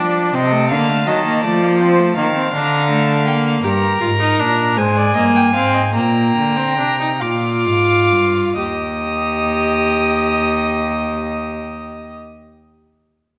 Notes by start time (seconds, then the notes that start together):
Already playing: F3 D4 D5 A5
0.34 C3 C4 D#5
0.52 A3
0.70 D3 A#3 F5
0.89 A3
1.07 D#3 F#3 D#5
1.25 A#3
1.44 F3 A3 D5
1.62 A#3
1.79 C4 C5
1.99 A3
2.16 D#3 A#3 F5
2.35 C4
2.53 D3 D4 A#5
2.91 A3
3.07 A5
3.27 A#3 G5
3.45 F5
3.63 G2 G4 A#4 A#5
4.01 G#2 F4
4.20 D#4
4.39 A#2 D4
4.77 G#2 G#3 C5 G#5
4.97 D5
5.15 G2 A#3 D#5
5.35 G5
5.54 G#2 C4 F5
5.74 D#5
5.94 A#2 A#3 G5 A#5
6.37 D3
6.57 C4
6.79 C3 D4
7.00 D#4
7.20 A#2 F4 F5 D6
7.66 G#2
8.11 G2
8.56 D#2 G4 D#5 D#6